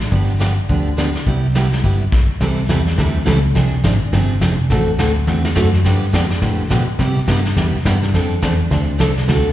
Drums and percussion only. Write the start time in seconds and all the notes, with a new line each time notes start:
0.01 snare
0.12 brush sweep, kick
0.41 snare, hi-hat pedal
0.69 brush sweep, kick
0.98 snare, hi-hat pedal
1.16 snare
1.27 brush sweep, kick
1.55 snare, hi-hat pedal
1.72 snare
1.84 brush sweep, kick
2.12 kick, snare, hi-hat pedal, crash
2.41 brush sweep, kick, snare
2.69 kick, snare, hi-hat pedal
2.87 snare
2.98 brush sweep, kick, snare
3.27 kick, snare, hi-hat pedal
3.55 brush sweep, kick, snare
3.84 kick, snare, hi-hat pedal
4.13 brush sweep, kick, snare
4.41 kick, snare, hi-hat pedal
4.70 brush sweep, kick, snare
4.99 kick, snare, hi-hat pedal
5.27 brush sweep, kick, snare
5.45 snare
5.56 kick, snare, hi-hat pedal
5.74 snare
5.85 brush sweep, kick, snare
6.13 kick, snare, hi-hat pedal
6.31 snare
6.42 brush sweep, kick, snare
6.70 kick, snare, hi-hat pedal
6.99 brush sweep, kick, snare
7.28 kick, snare, hi-hat pedal
7.45 snare
7.56 brush sweep, kick, snare
7.85 kick, snare, hi-hat pedal
8.03 snare
8.14 brush sweep, kick, snare
8.42 kick, snare, hi-hat pedal
8.71 brush sweep, kick, snare
9.00 kick, snare, hi-hat pedal
9.17 snare
9.29 brush sweep, kick, snare